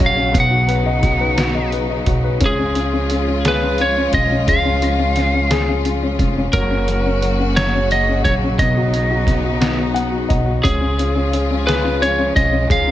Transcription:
Already playing: string section C#3 F#3 A#3 F#4, grand piano C#4
0.00 upright bass A#1, grand piano F#3, kick, closed hi-hat
0.06 lead electric guitar F5
0.17 grand piano C#4
0.33 upright bass B1, grand piano B3, string section B3 D#4, kick, closed hi-hat
0.40 lead electric guitar F#5
0.51 grand piano F#4
0.68 grand piano B4, closed hi-hat
0.86 grand piano D#5
1.03 grand piano F#4, kick, snare, closed hi-hat
1.20 grand piano B4
1.38 grand piano F#4, snare, closed hi-hat
1.55 grand piano D#5
1.72 grand piano B4, closed hi-hat
1.90 grand piano D#5
2.06 upright bass B1, grand piano F#4, kick, closed hi-hat
2.24 grand piano B4
2.40 upright bass C#2, string section F3 G#3 F4, grand piano C#4, kick, closed hi-hat
2.46 lead electric guitar G#4
2.59 grand piano C#4
2.75 grand piano C#4, closed hi-hat
2.94 grand piano C#4
3.10 grand piano C#4, closed hi-hat
3.28 grand piano C#4
3.45 grand piano G#4, lead electric guitar B4, snare, closed hi-hat
3.62 grand piano C#4
3.78 grand piano C#4, lead electric guitar C#5, closed hi-hat
3.97 grand piano C#4
4.13 upright bass B1, grand piano C#4, lead electric guitar D#5, kick, closed hi-hat
4.32 grand piano C#4
4.48 upright bass C#2, grand piano G#3, lead electric guitar F5, kick, closed hi-hat
4.65 grand piano C#4
4.82 grand piano C#4, closed hi-hat
4.99 grand piano C#4
5.16 grand piano C#4, snare, closed hi-hat
5.34 grand piano C#4
5.50 grand piano G#4, snare, closed hi-hat
5.69 grand piano C#4
5.85 grand piano C#4, closed hi-hat
6.03 grand piano C#4
6.19 upright bass F1, grand piano C#4, kick, closed hi-hat
6.37 grand piano C#4
6.53 upright bass F#1, string section C#3 F#3 A#3 F#4, grand piano F#3, lead electric guitar A#4, kick, closed hi-hat
6.71 grand piano C#4
6.88 grand piano F#3, closed hi-hat
7.06 grand piano C#4
7.22 grand piano F#3, closed hi-hat
7.40 grand piano C#4
7.56 grand piano F#3, lead electric guitar C#5, snare, closed hi-hat
7.75 grand piano C#4
7.91 grand piano F#3, lead electric guitar D#5, closed hi-hat
8.09 grand piano C#4
8.24 upright bass A#1, grand piano F#3, lead electric guitar C#5, kick, closed hi-hat
8.44 grand piano C#4
8.58 upright bass B1, string section B3 D#4, grand piano B3, lead electric guitar D#5, kick, closed hi-hat
8.77 grand piano F#4
8.93 grand piano B3, closed hi-hat
9.11 grand piano F#4
9.27 grand piano B3, kick, snare, closed hi-hat
9.44 grand piano F#4
9.60 grand piano B3, snare, closed hi-hat
9.77 grand piano F#4
9.94 grand piano B3 F#5, closed hi-hat
10.11 grand piano F#4
10.29 upright bass B1, grand piano B3 D#5, kick, closed hi-hat
10.46 grand piano F#4
10.63 upright bass C#2, string section C#3 F3 G#3 F4, grand piano C#4, lead electric guitar G#4, kick, closed hi-hat
10.81 grand piano C#4
10.99 grand piano C#4, closed hi-hat
11.15 grand piano C#4
11.33 grand piano C#4, closed hi-hat
11.51 grand piano C#4
11.67 grand piano G#4, lead electric guitar B4, snare, closed hi-hat
11.85 grand piano C#4
12.02 grand piano C#4, lead electric guitar C#5, closed hi-hat
12.18 grand piano C#4
12.36 upright bass B1, grand piano C#4, lead electric guitar D#5, kick, closed hi-hat
12.52 grand piano C#4
12.69 upright bass C#2, grand piano G#3, string section D#4, lead electric guitar F5, kick, closed hi-hat
12.87 grand piano C#4

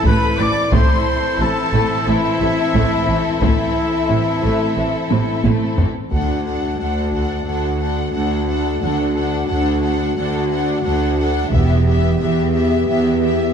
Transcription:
Already playing: french horn section E3 E4, viola section C4, violin section E4 A4
0.04 double bass section A1, cello section A2, viola section A3, trumpet section B4, violin section B5, taiko
0.38 double bass section A1, cello section A2, viola section E3, trumpet section D5, violin section D6
0.72 double bass section A1, cello section A2, french horn section E3 E4, viola section A3 C4, violin section E4 A4 C6, trumpet section C5, taiko
1.39 double bass section A1, cello section A2, viola section C3, trumpet section A4, violin section A5
1.73 double bass section A1, cello section A2, viola section A3
2.06 double bass section A1, cello section A2, viola section E3, trumpet section E4, violin section E5
2.41 double bass section A1, cello section A2, viola section C3
2.74 double bass section A1, cello section A2, viola section A3, taiko
3.08 double bass section A1, cello section A2, viola section E3
3.41 double bass section A1, cello section A2, viola section A3, trumpet section E4, violin section E5, taiko
4.09 double bass section A1, cello section A2, viola section C3
4.42 double bass section A1, cello section A2, viola section A3
4.76 double bass section A1, cello section A2, viola section E3
5.11 double bass section A1, cello section A2, viola section C3, taiko high
5.44 double bass section A1, cello section A2, viola section A3, taiko high
5.78 double bass section A1, cello section A2, viola section E3, taiko low
6.11 cello section D2, double bass section D2, french horn section A3 F#4, viola section D4, violin section A4 F#5, taiko
6.46 viola section D4, violin section A4 F#5
6.79 cello section D2, viola section D4, violin section A4 F#5
7.13 viola section D4, violin section A4 F#5, taiko
7.46 cello section D2, viola section D4, violin section A4 F#5
7.80 viola section D4, violin section A4 F#5
8.13 cello section D2, viola section D4, violin section A4 F#5
8.47 viola section D4, violin section A4 F#5
8.81 cello section D2, double bass section D2, viola section D4, violin section A4 F#5
9.14 viola section D4, violin section A4 F#5
9.48 cello section D2, viola section D4, violin section A4 F#5
9.82 viola section D4, violin section A4 F#5
10.17 cello section D2, viola section D4, violin section A4 F#5
10.50 viola section D4, violin section A4 F#5
10.84 cello section D2, viola section D4, violin section A4 F#5
11.19 viola section D4, violin section A4 F#5
11.52 double bass section E1, cello section E2, viola section B3, french horn section B3 G4, violin section G4 E5, taiko
11.86 viola section B3, violin section G4 E5
12.19 cello section E2, viola section B3, violin section G4 E5
12.53 viola section B3, violin section G4 E5
12.88 cello section E2, viola section B3, violin section G4 E5
13.21 viola section B3, violin section G4 E5

